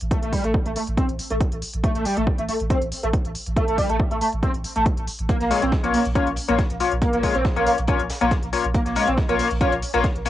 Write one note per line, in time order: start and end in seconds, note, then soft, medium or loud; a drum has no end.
0.01 0.11 A1 medium
0.01 closed hi-hat medium
0.11 0.18 A3 medium
0.11 kick loud
0.11 closed hi-hat medium
0.23 0.33 A1 medium
0.23 0.32 A3 medium
0.23 closed hi-hat medium
0.33 0.43 G3 loud
0.33 kick medium
0.33 open hi-hat loud
0.44 0.54 A1 medium
0.44 0.50 A3 loud
0.44 closed hi-hat medium
0.54 kick loud
0.66 0.76 A1 medium
0.66 0.69 A3 medium
0.66 closed hi-hat medium
0.76 0.80 A3 medium
0.76 open hi-hat loud
0.87 0.97 A1 medium
0.87 closed hi-hat medium
0.97 1.05 C4 medium
0.97 kick loud
0.97 closed hi-hat medium
1.09 1.19 A1 medium
1.09 closed hi-hat medium
1.19 open hi-hat loud
1.30 1.40 A1 medium
1.30 1.34 A3 medium
1.30 closed hi-hat medium
1.41 kick loud
1.41 closed hi-hat medium
1.52 1.62 A1 medium
1.52 closed hi-hat medium
1.62 open hi-hat loud
1.74 1.84 A1 medium
1.74 closed hi-hat medium
1.84 1.91 A3 medium
1.84 kick loud
1.84 closed hi-hat medium
1.95 2.05 A1 medium
1.95 2.05 A3 medium
1.95 closed hi-hat medium
2.05 2.16 G3 loud
2.05 open hi-hat loud
2.17 2.27 A1 medium
2.17 2.23 A3 loud
2.17 closed hi-hat medium
2.27 kick loud
2.38 2.48 A1 medium
2.38 2.42 A3 medium
2.38 closed hi-hat medium
2.49 2.53 A3 medium
2.49 open hi-hat loud
2.60 2.70 A1 medium
2.60 closed hi-hat medium
2.70 2.77 C4 medium
2.70 kick loud
2.70 closed hi-hat medium
2.82 2.92 A1 medium
2.82 closed hi-hat medium
2.92 open hi-hat loud
3.03 3.13 A1 medium
3.03 3.07 A3 medium
3.03 closed hi-hat medium
3.13 kick loud
3.13 closed hi-hat medium
3.25 3.35 A1 medium
3.25 closed hi-hat medium
3.35 open hi-hat loud
3.46 3.56 A1 medium
3.46 closed hi-hat medium
3.56 3.63 A3 medium
3.56 kick loud
3.56 closed hi-hat medium
3.68 3.78 A1 medium
3.68 3.77 A3 medium
3.68 closed hi-hat medium
3.78 3.89 G3 loud
3.78 kick medium
3.78 open hi-hat loud
3.89 3.99 A1 medium
3.89 3.96 A3 loud
3.89 closed hi-hat medium
4.00 kick loud
4.11 4.21 A1 medium
4.11 4.15 A3 medium
4.11 closed hi-hat medium
4.21 4.25 A3 medium
4.21 open hi-hat loud
4.33 4.43 A1 medium
4.33 closed hi-hat medium
4.43 4.50 C4 medium
4.43 kick loud
4.43 closed hi-hat medium
4.54 4.64 A1 medium
4.54 closed hi-hat medium
4.64 open hi-hat loud
4.76 4.86 A1 medium
4.76 4.82 A3 loud
4.76 closed hi-hat soft
4.86 kick loud
4.86 closed hi-hat medium
4.97 5.07 A1 medium
4.97 closed hi-hat medium
5.07 open hi-hat loud
5.19 5.29 A1 medium
5.19 closed hi-hat medium
5.29 5.36 A#3 medium
5.29 kick loud
5.29 closed hi-hat medium
5.40 5.50 A#1 medium
5.40 5.50 A#3 medium
5.40 snare soft
5.40 closed hi-hat medium
5.51 5.61 G#3 loud
5.51 5.63 A#3 medium
5.51 5.63 F4 medium
5.51 5.63 C#5 loud
5.51 closed hi-hat medium
5.51 open hi-hat loud
5.62 5.72 A#1 medium
5.62 5.68 C4 loud
5.62 closed hi-hat medium
5.62 closed hi-hat soft
5.72 kick loud
5.72 snare loud
5.72 closed hi-hat medium
5.84 5.94 A#1 medium
5.84 6.03 A#3 medium
5.84 5.87 A#3 medium
5.84 6.03 F4 medium
5.84 6.03 C#5 loud
5.84 closed hi-hat soft
5.94 5.98 A#3 medium
5.94 open hi-hat loud
5.94 open hi-hat medium
6.05 6.15 A#1 medium
6.05 closed hi-hat medium
6.15 6.28 A#3 loud
6.15 6.23 C#4 medium
6.15 6.28 F4 medium
6.15 6.28 C#5 loud
6.15 kick loud
6.15 closed hi-hat medium
6.27 6.37 A#1 medium
6.27 closed hi-hat soft
6.36 closed hi-hat medium
6.36 open hi-hat loud
6.48 6.58 A#1 medium
6.48 6.60 A#3 medium
6.48 6.52 A#3 medium
6.48 6.60 F4 medium
6.48 6.60 C#5 loud
6.48 closed hi-hat soft
6.58 kick loud
6.58 snare loud
6.58 closed hi-hat medium
6.70 6.80 A#1 medium
6.70 closed hi-hat medium
6.80 6.93 A#3 medium
6.80 6.93 F4 medium
6.80 6.93 C#5 medium
6.80 snare soft
6.80 closed hi-hat medium
6.80 open hi-hat loud
6.92 7.02 A#1 medium
6.92 closed hi-hat soft
7.02 7.09 A#3 medium
7.02 kick loud
7.02 closed hi-hat medium
7.13 7.23 A#1 medium
7.13 7.23 A#3 medium
7.13 closed hi-hat medium
7.23 7.34 G#3 loud
7.23 7.36 A#3 medium
7.23 7.36 F4 medium
7.23 7.36 C#5 loud
7.23 kick medium
7.23 closed hi-hat medium
7.23 open hi-hat loud
7.35 7.45 A#1 medium
7.35 7.41 C4 loud
7.35 closed hi-hat medium
7.45 kick loud
7.45 snare loud
7.45 closed hi-hat medium
7.56 7.66 A#1 medium
7.56 7.76 A#3 medium
7.56 7.60 A#3 medium
7.56 7.76 F4 medium
7.56 7.76 C#5 loud
7.56 closed hi-hat soft
7.66 7.71 A#3 medium
7.66 closed hi-hat medium
7.66 open hi-hat loud
7.78 7.88 A#1 medium
7.78 closed hi-hat medium
7.78 closed hi-hat soft
7.88 8.01 A#3 loud
7.88 7.95 C#4 medium
7.88 8.01 F4 medium
7.88 8.01 C#5 loud
7.88 kick loud
7.88 closed hi-hat medium
7.99 8.10 A#1 medium
7.99 closed hi-hat medium
8.10 snare loud
8.10 closed hi-hat medium
8.10 open hi-hat loud
8.21 8.31 A#1 medium
8.21 8.33 A#3 medium
8.21 8.25 A#3 medium
8.21 8.33 F4 medium
8.21 8.33 C#5 loud
8.21 closed hi-hat medium
8.21 closed hi-hat soft
8.31 kick loud
8.31 snare loud
8.31 closed hi-hat medium
8.43 8.53 A#1 medium
8.43 closed hi-hat medium
8.53 8.66 A#3 medium
8.53 8.66 F4 medium
8.53 8.66 C#5 medium
8.53 closed hi-hat medium
8.53 open hi-hat loud
8.64 8.74 A#1 medium
8.64 closed hi-hat medium
8.74 8.82 A#3 medium
8.74 kick loud
8.74 closed hi-hat medium
8.86 8.96 A#1 medium
8.86 8.95 A#3 medium
8.86 snare soft
8.86 closed hi-hat medium
8.95 9.07 G#3 loud
8.95 9.09 A#3 medium
8.95 9.09 F4 medium
8.95 9.09 C#5 loud
8.95 closed hi-hat medium
8.95 open hi-hat loud
9.07 9.17 A#1 medium
9.07 9.14 C4 loud
9.07 closed hi-hat soft
9.07 closed hi-hat medium
9.17 kick loud
9.17 snare loud
9.17 closed hi-hat medium
9.29 9.39 A#1 medium
9.29 9.48 A#3 medium
9.29 9.33 A#3 medium
9.29 9.48 F4 medium
9.29 9.48 C#5 loud
9.29 closed hi-hat soft
9.29 closed hi-hat medium
9.39 9.43 A#3 medium
9.39 open hi-hat loud
9.39 open hi-hat medium
9.51 9.61 A#1 medium
9.51 closed hi-hat medium
9.61 9.73 A#3 loud
9.61 9.68 C#4 medium
9.61 9.73 F4 medium
9.61 9.73 C#5 loud
9.61 kick loud
9.61 closed hi-hat medium
9.72 9.82 A#1 medium
9.72 closed hi-hat soft
9.72 closed hi-hat medium
9.82 closed hi-hat medium
9.82 open hi-hat loud
9.94 10.04 A#1 medium
9.94 10.05 A#3 loud
9.94 9.98 A#3 medium
9.94 10.05 F4 medium
9.94 10.05 C#5 loud
9.94 closed hi-hat medium
10.03 kick loud
10.03 snare loud
10.03 closed hi-hat medium
10.15 10.25 A#1 medium
10.15 closed hi-hat medium
10.25 10.29 A#3 medium
10.25 10.29 F4 medium
10.25 10.29 C#5 medium
10.25 snare soft
10.25 closed hi-hat medium
10.25 open hi-hat loud